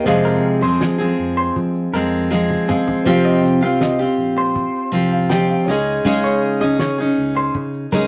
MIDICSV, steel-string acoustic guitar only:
0, 0, Header, 1, 2, 480
1, 0, Start_track
1, 0, Tempo, 749064
1, 35, Time_signature, 4, 2, 24, 8
1, 5173, End_track
2, 0, Start_track
2, 0, Title_t, "Steel-string acoustic guitar"
2, 0, Program_c, 0, 25
2, 37, Note_on_c, 0, 41, 82
2, 37, Note_on_c, 0, 48, 89
2, 41, Note_on_c, 0, 53, 92
2, 44, Note_on_c, 0, 56, 102
2, 46, Note_on_c, 0, 60, 98
2, 47, Note_on_c, 0, 68, 96
2, 384, Note_off_c, 0, 68, 0
2, 390, Note_off_c, 0, 60, 0
2, 392, Note_on_c, 0, 68, 56
2, 396, Note_off_c, 0, 41, 0
2, 397, Note_off_c, 0, 48, 0
2, 398, Note_off_c, 0, 53, 0
2, 398, Note_on_c, 0, 60, 50
2, 400, Note_off_c, 0, 56, 0
2, 407, Note_on_c, 0, 56, 52
2, 411, Note_on_c, 0, 53, 50
2, 620, Note_off_c, 0, 68, 0
2, 628, Note_on_c, 0, 68, 58
2, 629, Note_off_c, 0, 60, 0
2, 634, Note_off_c, 0, 56, 0
2, 637, Note_on_c, 0, 60, 50
2, 640, Note_off_c, 0, 53, 0
2, 642, Note_on_c, 0, 56, 47
2, 647, Note_on_c, 0, 53, 43
2, 1232, Note_off_c, 0, 68, 0
2, 1236, Note_off_c, 0, 53, 0
2, 1239, Note_off_c, 0, 56, 0
2, 1239, Note_on_c, 0, 53, 64
2, 1246, Note_on_c, 0, 56, 65
2, 1249, Note_off_c, 0, 60, 0
2, 1251, Note_on_c, 0, 60, 69
2, 1256, Note_on_c, 0, 68, 76
2, 1468, Note_off_c, 0, 53, 0
2, 1473, Note_off_c, 0, 56, 0
2, 1475, Note_on_c, 0, 53, 66
2, 1479, Note_off_c, 0, 60, 0
2, 1481, Note_on_c, 0, 56, 67
2, 1482, Note_off_c, 0, 68, 0
2, 1486, Note_on_c, 0, 60, 76
2, 1490, Note_on_c, 0, 68, 74
2, 1707, Note_off_c, 0, 53, 0
2, 1714, Note_off_c, 0, 56, 0
2, 1715, Note_on_c, 0, 53, 54
2, 1722, Note_off_c, 0, 60, 0
2, 1722, Note_on_c, 0, 56, 59
2, 1723, Note_off_c, 0, 68, 0
2, 1729, Note_on_c, 0, 60, 61
2, 1734, Note_on_c, 0, 68, 63
2, 1953, Note_off_c, 0, 53, 0
2, 1955, Note_off_c, 0, 60, 0
2, 1958, Note_on_c, 0, 48, 82
2, 1959, Note_off_c, 0, 56, 0
2, 1961, Note_on_c, 0, 53, 94
2, 1963, Note_on_c, 0, 60, 92
2, 1965, Note_off_c, 0, 68, 0
2, 1966, Note_on_c, 0, 65, 96
2, 1968, Note_on_c, 0, 67, 92
2, 2304, Note_off_c, 0, 67, 0
2, 2312, Note_on_c, 0, 67, 53
2, 2313, Note_off_c, 0, 65, 0
2, 2317, Note_off_c, 0, 48, 0
2, 2319, Note_off_c, 0, 53, 0
2, 2320, Note_off_c, 0, 60, 0
2, 2320, Note_on_c, 0, 65, 51
2, 2328, Note_on_c, 0, 60, 48
2, 2549, Note_off_c, 0, 67, 0
2, 2557, Note_off_c, 0, 65, 0
2, 2557, Note_on_c, 0, 67, 56
2, 2562, Note_off_c, 0, 60, 0
2, 2565, Note_on_c, 0, 65, 51
2, 2575, Note_on_c, 0, 60, 45
2, 3149, Note_off_c, 0, 60, 0
2, 3150, Note_on_c, 0, 53, 72
2, 3156, Note_off_c, 0, 65, 0
2, 3157, Note_off_c, 0, 67, 0
2, 3157, Note_on_c, 0, 60, 70
2, 3164, Note_on_c, 0, 65, 68
2, 3170, Note_on_c, 0, 67, 66
2, 3384, Note_off_c, 0, 53, 0
2, 3392, Note_off_c, 0, 60, 0
2, 3392, Note_on_c, 0, 53, 64
2, 3398, Note_off_c, 0, 65, 0
2, 3399, Note_on_c, 0, 60, 66
2, 3404, Note_off_c, 0, 67, 0
2, 3406, Note_on_c, 0, 65, 70
2, 3413, Note_on_c, 0, 67, 72
2, 3635, Note_off_c, 0, 53, 0
2, 3638, Note_off_c, 0, 60, 0
2, 3638, Note_on_c, 0, 56, 62
2, 3642, Note_off_c, 0, 65, 0
2, 3645, Note_off_c, 0, 67, 0
2, 3647, Note_on_c, 0, 61, 63
2, 3649, Note_on_c, 0, 63, 70
2, 3657, Note_on_c, 0, 68, 72
2, 3871, Note_off_c, 0, 56, 0
2, 3874, Note_on_c, 0, 49, 90
2, 3875, Note_off_c, 0, 61, 0
2, 3875, Note_off_c, 0, 63, 0
2, 3879, Note_on_c, 0, 56, 84
2, 3880, Note_off_c, 0, 68, 0
2, 3882, Note_on_c, 0, 61, 83
2, 3883, Note_on_c, 0, 63, 89
2, 3888, Note_on_c, 0, 68, 104
2, 4224, Note_off_c, 0, 68, 0
2, 4232, Note_on_c, 0, 68, 61
2, 4236, Note_off_c, 0, 49, 0
2, 4236, Note_off_c, 0, 63, 0
2, 4238, Note_off_c, 0, 56, 0
2, 4240, Note_off_c, 0, 61, 0
2, 4244, Note_on_c, 0, 63, 52
2, 4250, Note_on_c, 0, 61, 47
2, 4465, Note_off_c, 0, 68, 0
2, 4473, Note_on_c, 0, 68, 57
2, 4478, Note_off_c, 0, 63, 0
2, 4484, Note_off_c, 0, 61, 0
2, 4485, Note_on_c, 0, 63, 52
2, 4492, Note_on_c, 0, 61, 48
2, 5075, Note_off_c, 0, 61, 0
2, 5075, Note_off_c, 0, 68, 0
2, 5075, Note_on_c, 0, 56, 69
2, 5083, Note_on_c, 0, 61, 74
2, 5084, Note_off_c, 0, 63, 0
2, 5086, Note_on_c, 0, 63, 77
2, 5093, Note_on_c, 0, 68, 72
2, 5173, Note_off_c, 0, 56, 0
2, 5173, Note_off_c, 0, 61, 0
2, 5173, Note_off_c, 0, 63, 0
2, 5173, Note_off_c, 0, 68, 0
2, 5173, End_track
0, 0, End_of_file